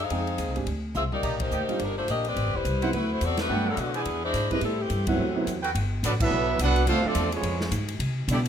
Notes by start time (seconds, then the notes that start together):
0.03 D#4 G#4 C5 F5
0.10 F2 G#3 C4 D#4 G5, kick, ride
0.27 ride
0.38 D#2, kick, hi-hat pedal, ride
0.48 C2
0.56 G#1 G#3 C4 D4 G4, ride
0.67 D2, kick, ride
0.94 C2 C4 F4 G#4 E5, hi-hat pedal, mid tom
1.11 A#3 D#4 G4 D5, mid tom
1.23 A#1 G4 D5 D#5 A#5, kick, crash
1.40 A#3 D#4 G4 C5, kick, ride
1.51 D2 G4 D5 D#5 G5, hi-hat pedal
1.68 G3 A#3 D4 F4, muted upright bass stroke, ride
1.79 G1 G3 D4 D#4 A#4, kick, ride
1.97 A3 D4 F4 C5
2.08 A#1 A#3 D4 G4 D#5, kick, hi-hat pedal, ride
2.25 C4 G4 B4 D5, ride
2.36 A1, kick, ride
2.46 G1
2.54 E1 G3 E4 B4 C5, kick
2.65 C2, kick, hi-hat pedal, ride
2.82 F#3 B3 C4 E4 B4 C5 F#5, ride
2.93 D2 A3 E4 F#4 B4, kick, ride
3.11 A3 E4 F#4 C5
3.21 E2 C4 F#4 A4 D5, kick, hi-hat pedal, ride
3.37 A3 D4 F#4 B4, snare, ride
3.49 G2 F#3 A3 B3 D4 A4 B4 F#5 G5
3.69 F#3 B3 D4 A4
3.77 B2 D3 A3 B3 F#4, kick, hi-hat pedal, ride
3.94 E3 B3 D4 E4 G#4 C5 D5 G#5, ride
4.05 E2, kick, ride
4.24 G#3 D4 E4 C5
4.34 G#2, kick, snare, hi-hat pedal, ride
4.51 G3 G#3 B3 C4 D4 E4 B4, kick, ride
4.61 A2 G3 C4 E4 A4, ride
4.81 E3 A3 C4 G4
4.90 G2, kick, hi-hat pedal, ride
5.07 A2 C3 E3 F#3 A3 B3 C4 E4 F#4, kick, ride
5.18 D2
5.35 F#3 B3 C4 E4
5.46 E2, kick, hi-hat pedal, ride
5.62 F#4 A4 B4 G5, ride
5.75 G1, kick, ride
6.03 A1 F#3 B3 D4 F#4 A4 D5, kick, hi-hat pedal, ride
6.20 F#3 B3 D4 E4 A4 B4 E5, kick, crash
6.31 B1
6.59 C2 B3 D4 F#4 A4 B4 F#5, kick, hi-hat pedal, ride
6.76 ride
6.87 D2 A3 C4 D4 F4 A4 C5 F5, kick, ride
7.04 F3 A3 C4 D4 F4 A4 D5, muted upright bass stroke
7.15 E2, kick, hi-hat pedal, ride
7.32 F3 G#3 B3 C#4 F4 G#4 C#5, ride
7.43 F2, kick, ride
7.61 snare
7.71 G#2, kick, hi-hat pedal, ride
7.88 ride
7.99 C3, kick, ride
8.28 B2 G3 A3 D4, kick, hi-hat pedal, ride
8.32 A3 E4 G4 D5
8.45 ride